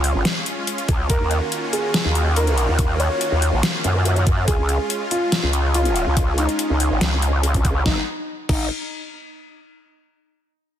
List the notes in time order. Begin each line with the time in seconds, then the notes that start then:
Already playing: C#2 G#3 C#4 F4
0.04 open hi-hat
0.15 G#1
0.25 snare, closed hi-hat
0.46 closed hi-hat
0.67 closed hi-hat
0.78 closed hi-hat
0.89 C#2, kick, closed hi-hat
1.10 D#2 D#3 A#3 F#4 A#4, kick, closed hi-hat
1.21 D#2
1.31 closed hi-hat
1.52 closed hi-hat
1.73 G#4, open hi-hat
1.94 snare, closed hi-hat
2.05 D#2
2.15 closed hi-hat
2.36 A#4, closed hi-hat
2.47 closed hi-hat
2.58 closed hi-hat
2.69 D#2
2.79 kick, closed hi-hat
3.00 C#5, closed hi-hat
3.21 closed hi-hat
3.32 D#2
3.42 open hi-hat
3.53 A#1
3.63 snare, closed hi-hat
3.84 F#2, closed hi-hat
4.05 closed hi-hat
4.16 closed hi-hat
4.27 F#2, kick, closed hi-hat
4.48 C#2 G#3 C#4 G#4, kick, closed hi-hat
4.59 C#2
4.69 closed hi-hat
4.90 closed hi-hat
5.11 F4, open hi-hat
5.32 snare, closed hi-hat
5.43 C#2
5.53 closed hi-hat
5.74 F4, closed hi-hat
5.85 closed hi-hat
5.96 closed hi-hat
6.07 C#2
6.17 kick, closed hi-hat
6.38 D#4, closed hi-hat
6.49 closed hi-hat
6.59 closed hi-hat
6.70 C#2
6.80 open hi-hat
6.91 G#1
7.01 C#2, snare, closed hi-hat
7.22 closed hi-hat
7.43 closed hi-hat
7.54 kick, closed hi-hat
7.65 kick, closed hi-hat
7.86 G#1 G#3 B3 D#4, kick, snare
8.49 G#1 D#4, kick, crash